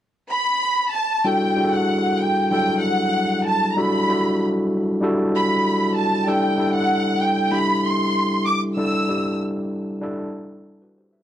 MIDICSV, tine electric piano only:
0, 0, Header, 1, 2, 480
1, 0, Start_track
1, 0, Key_signature, 1, "minor"
1, 0, Tempo, 626959
1, 955, Time_signature, 4, 2, 24, 8
1, 8598, End_track
2, 0, Start_track
2, 0, Title_t, "Tine electric piano"
2, 0, Program_c, 0, 4
2, 953, Note_on_c, 0, 55, 67
2, 954, Note_on_c, 0, 62, 56
2, 959, Note_on_c, 0, 64, 61
2, 962, Note_on_c, 0, 66, 62
2, 968, Note_on_c, 0, 69, 75
2, 1104, Control_c, 0, 64, 127
2, 1125, Note_off_c, 0, 55, 0
2, 1126, Note_off_c, 0, 62, 0
2, 1128, Note_off_c, 0, 64, 0
2, 1130, Note_off_c, 0, 66, 0
2, 1133, Note_off_c, 0, 69, 0
2, 1198, Note_on_c, 0, 55, 57
2, 1201, Note_on_c, 0, 62, 55
2, 1201, Note_on_c, 0, 64, 52
2, 1207, Note_on_c, 0, 66, 53
2, 1210, Note_on_c, 0, 68, 50
2, 1253, Note_off_c, 0, 68, 0
2, 1259, Note_on_c, 0, 69, 63
2, 1710, Note_off_c, 0, 55, 0
2, 1712, Note_off_c, 0, 62, 0
2, 1712, Note_off_c, 0, 64, 0
2, 1715, Note_off_c, 0, 66, 0
2, 1741, Note_off_c, 0, 69, 0
2, 1919, Note_on_c, 0, 55, 60
2, 1921, Note_on_c, 0, 62, 56
2, 1925, Note_on_c, 0, 64, 58
2, 1929, Note_on_c, 0, 54, 61
2, 1936, Note_on_c, 0, 69, 69
2, 2603, Note_off_c, 0, 55, 0
2, 2604, Note_off_c, 0, 62, 0
2, 2606, Note_off_c, 0, 64, 0
2, 2608, Note_off_c, 0, 54, 0
2, 2611, Note_off_c, 0, 69, 0
2, 2882, Note_on_c, 0, 62, 62
2, 2883, Note_on_c, 0, 55, 65
2, 2887, Note_on_c, 0, 64, 57
2, 2892, Note_on_c, 0, 66, 67
2, 2894, Note_on_c, 0, 69, 69
2, 3053, Note_off_c, 0, 55, 0
2, 3053, Note_off_c, 0, 62, 0
2, 3055, Note_off_c, 0, 64, 0
2, 3058, Note_off_c, 0, 66, 0
2, 3059, Note_off_c, 0, 69, 0
2, 3120, Note_on_c, 0, 55, 58
2, 3125, Note_on_c, 0, 62, 53
2, 3130, Note_on_c, 0, 64, 58
2, 3133, Note_on_c, 0, 66, 58
2, 3137, Note_on_c, 0, 69, 65
2, 3634, Note_off_c, 0, 55, 0
2, 3636, Note_off_c, 0, 62, 0
2, 3639, Note_off_c, 0, 64, 0
2, 3640, Note_off_c, 0, 66, 0
2, 3642, Note_off_c, 0, 69, 0
2, 3836, Note_on_c, 0, 55, 80
2, 3841, Note_on_c, 0, 62, 70
2, 3846, Note_on_c, 0, 64, 72
2, 3850, Note_on_c, 0, 66, 66
2, 3855, Note_on_c, 0, 69, 89
2, 4523, Note_off_c, 0, 55, 0
2, 4525, Note_off_c, 0, 62, 0
2, 4527, Note_off_c, 0, 64, 0
2, 4530, Note_off_c, 0, 66, 0
2, 4532, Note_off_c, 0, 69, 0
2, 4798, Note_on_c, 0, 55, 71
2, 4806, Note_on_c, 0, 62, 64
2, 4808, Note_on_c, 0, 64, 60
2, 4810, Note_on_c, 0, 69, 77
2, 4816, Control_c, 0, 64, 0
2, 4970, Control_c, 0, 64, 127
2, 4972, Note_off_c, 0, 55, 0
2, 4976, Note_off_c, 0, 62, 0
2, 4977, Note_off_c, 0, 64, 0
2, 4978, Note_off_c, 0, 69, 0
2, 5032, Note_on_c, 0, 55, 61
2, 5038, Note_on_c, 0, 62, 61
2, 5045, Note_on_c, 0, 64, 59
2, 5051, Note_on_c, 0, 69, 67
2, 5549, Note_off_c, 0, 55, 0
2, 5552, Note_off_c, 0, 62, 0
2, 5556, Note_off_c, 0, 64, 0
2, 5559, Note_off_c, 0, 69, 0
2, 5752, Note_on_c, 0, 55, 62
2, 5758, Note_on_c, 0, 62, 57
2, 5760, Note_on_c, 0, 64, 61
2, 5769, Note_on_c, 0, 67, 70
2, 6438, Note_off_c, 0, 55, 0
2, 6441, Note_off_c, 0, 62, 0
2, 6442, Note_off_c, 0, 64, 0
2, 6447, Note_off_c, 0, 67, 0
2, 6713, Note_on_c, 0, 55, 66
2, 6716, Note_on_c, 0, 62, 61
2, 6719, Note_on_c, 0, 64, 62
2, 6724, Note_on_c, 0, 69, 76
2, 6887, Note_off_c, 0, 55, 0
2, 6889, Note_off_c, 0, 62, 0
2, 6890, Note_off_c, 0, 64, 0
2, 6892, Note_off_c, 0, 69, 0
2, 6958, Note_on_c, 0, 55, 64
2, 6962, Note_on_c, 0, 62, 57
2, 6965, Note_on_c, 0, 64, 56
2, 6969, Note_on_c, 0, 67, 67
2, 7468, Note_off_c, 0, 55, 0
2, 7470, Note_off_c, 0, 62, 0
2, 7472, Note_off_c, 0, 64, 0
2, 7474, Note_off_c, 0, 67, 0
2, 7664, Note_on_c, 0, 55, 78
2, 7670, Note_on_c, 0, 62, 78
2, 7677, Note_on_c, 0, 64, 66
2, 7684, Note_on_c, 0, 69, 86
2, 8158, Note_off_c, 0, 69, 0
2, 8282, Note_on_c, 0, 71, 59
2, 8286, Note_on_c, 0, 66, 46
2, 8349, Note_off_c, 0, 55, 0
2, 8352, Note_off_c, 0, 62, 0
2, 8356, Note_off_c, 0, 64, 0
2, 8392, Note_off_c, 0, 71, 0
2, 8394, Note_off_c, 0, 66, 0
2, 8405, Note_on_c, 0, 72, 53
2, 8406, Note_on_c, 0, 67, 48
2, 8513, Note_off_c, 0, 72, 0
2, 8514, Note_off_c, 0, 67, 0
2, 8519, Note_on_c, 0, 71, 49
2, 8519, Note_on_c, 0, 76, 56
2, 8598, Note_off_c, 0, 71, 0
2, 8598, Note_off_c, 0, 76, 0
2, 8598, End_track
0, 0, End_of_file